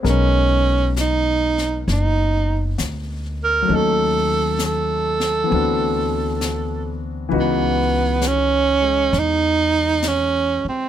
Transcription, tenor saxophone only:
X:1
M:4/4
L:1/8
Q:"Swing" 1/4=66
K:C#m
V:1 name="Tenor saxophone"
C2 D2 D2 z ^A | A2 A4- A z | B,2 C2 D2 C ^B, |]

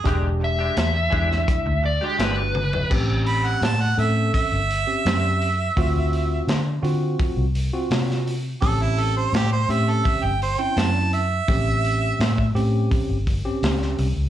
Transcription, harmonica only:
X:1
M:4/4
L:1/16
Q:1/4=84
K:D
V:1 name="Harmonica"
^G z12 z3 | z2 b f a f e2 e8- | e4 z12 | A E A ^B G B e A e g B g a2 e2- |
e6 z8 z2 |]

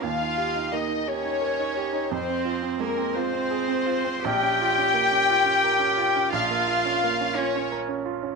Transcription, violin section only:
X:1
M:6/8
L:1/8
Q:3/8=57
K:Bbdor
V:1 name="Violin section"
f2 e d3 | c2 B c3 | g6 | f3 d z2 |]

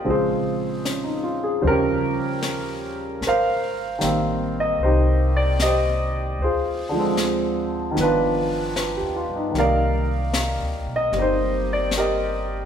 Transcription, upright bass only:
X:1
M:4/4
L:1/8
Q:"Swing" 1/4=76
K:Ablyd
V:1 name="Upright bass" clef=bass
B,,,4 E,,4 | A,,,2 =A,,,2 C,,4 | D,,4 G,,,2- (3G,,, E,, G,, | C,,2- (3C,, D,, _C,, G,,,4 |]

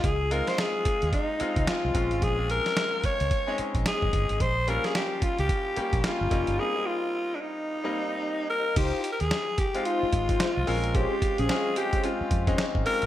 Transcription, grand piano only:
X:1
M:4/4
L:1/16
Q:"Swing 16ths" 1/4=110
K:Dblyd
V:1 name="Grand piano"
z2 [A,CEF]6- [A,CEF] z [A,CEF]2 [A,CEF]2 [A,CDF]2- | [A,CDF] [A,CDF]6- [A,CDF] z [A,CDE]6- [A,CDE] | z2 [G,B,DF]6- [G,B,DF] z [G,B,DG]2 [G,B,DF]2 [G,B,DE]2 | [G,B,CE] [G,B,CE]6- [G,B,CE] z [G,B,CE]6- [G,B,CE] |
z6 z [A,CEF]6 z [A,CDF]2- | [A,CDF]3 z [A,CDF]2 [A,CDG]2 [A,CDF]3 [A,CDE]3 [A,CDF]2 |]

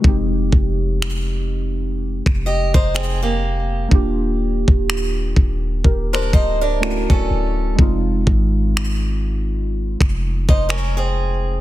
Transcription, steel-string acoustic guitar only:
X:1
M:4/4
L:1/16
Q:"Swing 16ths" 1/4=62
K:Fdor
V:1 name="Steel-string acoustic guitar"
z8 z2 [Ge] [Ec] [CA] [B,G]3 | z8 z [DB] [Ec] [DB]2 [^C=A]3 | z8 z3 [Ec] [_DB] [CA]3 |]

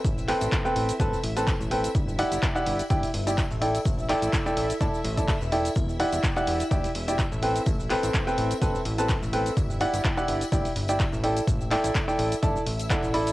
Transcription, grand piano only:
X:1
M:4/4
L:1/16
Q:"Swing 16ths" 1/4=126
K:Ador
V:1 name="Grand piano"
z2 [CABg]3 [CABg]2 z [CABa] z2 [CABa] z2 [CABg] z | z2 [EGdf]3 [EGdf]2 z [EGdg] z2 [EGdg] z2 [EAdg] z | z2 [EAdg]3 [EAdg]2 z [EAda] z2 [EAda] z2 [EAdg] z | z2 [EGdf]3 [EGdf]2 z [EGdg] z2 [EGdg] z2 [CABg] z |
z2 [CABg]3 [CABg]2 z [CABa] z2 [CABa] z2 [CABg] z | z2 [EGdf]3 [EGdf]2 z [EGdg] z2 [EGdg] z2 [EAdg] z | z2 [EAdg]3 [EAdg]2 z [EAda] z3 [EAdf]2 [EAdb] z |]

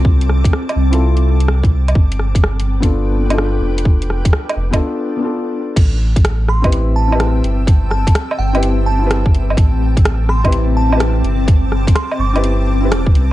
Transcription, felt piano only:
X:1
M:4/4
L:1/16
Q:"Swing 16ths" 1/4=126
K:Am
V:1 name="Felt piano"
[CEFA]6- [CEFA] [CEFA]4 z4 z | z6 z [B,DFA]4 [B,DFA]4- [B,DFA]- | [B,DFA]6- [B,DFA] [B,DFA]4 [B,DFA]4- [B,DFA] | z6 z [CEGB]4 [CEGB]4- [CEGB]- |
[CEGB]6- [CEGB] [CEGB]4 [CEGB]4- [CEGB]- | [CEGB]6- [CEGB] [CEGB]4 [CEGB]4- [CEGB]- | [CEGB]6- [CEGB] [CEGB]3 z [CEGB] z4 |]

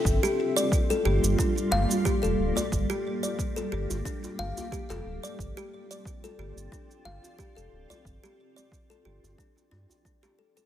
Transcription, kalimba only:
X:1
M:4/4
L:1/16
Q:"Swing 16ths" 1/4=90
K:Gm
V:1 name="Kalimba"
z G z d z A G z D z f z G A z d | z G z d z A G z D z f z G A z d | z G z d z A G z D z f z G A z d | z G z d z A G z D z D z D G A A |]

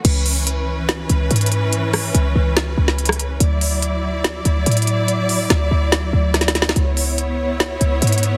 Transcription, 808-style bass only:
X:1
M:4/4
L:1/8
Q:1/4=143
K:C#phr
V:1 name="808-style bass" clef=bass
C,,4- C,, C,, G,,2- | G,,2 C,, C,,2 C,,3 | D,,4- D,, D,, A,,2- | A,,2 D,, D,,2 D,,3 |
C,,4- C,, C,, G,,2 |]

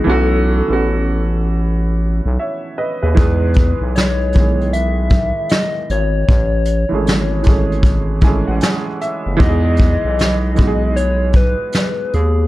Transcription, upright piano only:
X:1
M:4/4
L:1/16
Q:"Swing 16ths" 1/4=77
K:E
V:1 name="Upright piano"
z12 [ce]2 [Bd] [GB]- | [GB] z12 z3 | z8 z2 g f g2 e2 | z16 |]
V:2 name="Upright piano"
[E,A,B,CF]2 z [E,A,B,CF]4- [E,A,B,CF] z8 | [E,G,B,DG]4 z2 [D,E,G,B,G]4- [D,E,G,B,G] z4 z | z3 [E,G,A,CG]2 z [E,G,A,CG]3 z [E,G,A,CG]4 z2 | [E,G,B,DFG]4 z2 [E,G,B,DFG]4- [E,G,B,DFG] z4 z |]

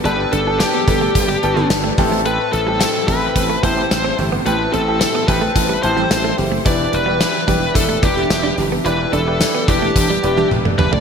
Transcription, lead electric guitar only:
X:1
M:4/4
L:1/16
Q:1/4=109
K:Em
V:1 name="Lead electric guitar"
B2 A2 G8 z4 | B2 A2 A2 B4 c4 z2 | B2 A2 A2 B4 c4 z2 | d2 B2 B4 A2 G4 z2 |
B2 A4 G6 z2 B d |]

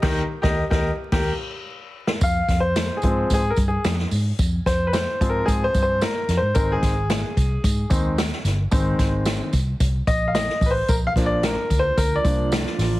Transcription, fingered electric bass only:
X:1
M:4/4
L:1/16
Q:1/4=110
K:Fdor
V:1 name="Fingered electric bass" clef=bass
E,,2 z E,,2 E,,2 z E,,2 z6 | F,,2 F,,4 A,,2 A,,2 G,,2 F,,2 A,,2 | F,,2 F,,4 A,,2 A,,2 G,,3 z F,, A,, | A,,,2 A,,,4 C,,2 A,,2 E,,4 G,,,2 |
A,,,2 A,,,4 C,,2 C,,2 B,,,4 =A,,,2 | B,,,2 B,,,4 D,,2 D,,2 C,,4 =A,,,2 |]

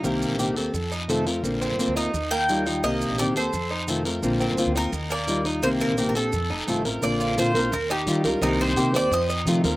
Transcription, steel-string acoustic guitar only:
X:1
M:4/4
L:1/8
Q:1/4=172
K:Bb
V:1 name="Steel-string acoustic guitar"
[C,E,B,CG]2 [C,E,B,CG] [B,CG] z2 [C,E,A,CF] [A,CF] | [D,B,CF]2 [D,B,CF] [B,CF] z2 [E,G,EF] [G,EF] | [C,E,B,CG]2 [C,E,B,CG] [B,CG] z2 [C,E,A,CF] [A,CF] | [D,B,CF]2 [D,B,CF] [B,CF] z2 [E,G,EF] [G,EF] |
[C,E,B,CG]2 [C,E,B,CG] [B,CG] z2 [C,E,A,CF] [A,CF] | [D,B,CF]2 [D,B,CF] [B,CF] z2 [E,G,EF] [G,EF] | [C,E,B,CG]2 [C,E,B,CG] [B,CG] z2 [C,E,A,CF] [A,CF] |]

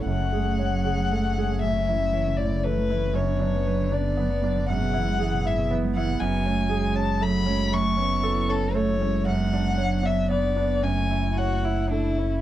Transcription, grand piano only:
X:1
M:3/4
L:1/8
Q:1/4=117
K:F#m
V:1 name="Grand piano"
F,, G c G A, G | F,, E c E A, E | F,, D B D B, D | F,, E G E B, E |
F,, C G C A, C | F,, C A C A, C | F,, D c D B, D | F,, E c E A, E |]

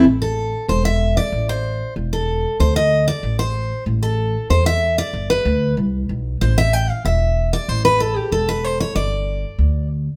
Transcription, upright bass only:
X:1
M:4/4
L:1/8
Q:1/4=189
K:Am
V:1 name="Upright bass" clef=bass
A,,,4 E,,,4 | A,,,4 E,,,4 | D,,4 A,,,4 | A,,,4 E,,4 |
G,,,2 D,,2 C,,2 B,,,2 | A,,,4 E,,,4 | A,,,4 E,,,4 | G,,,4 D,,4 |]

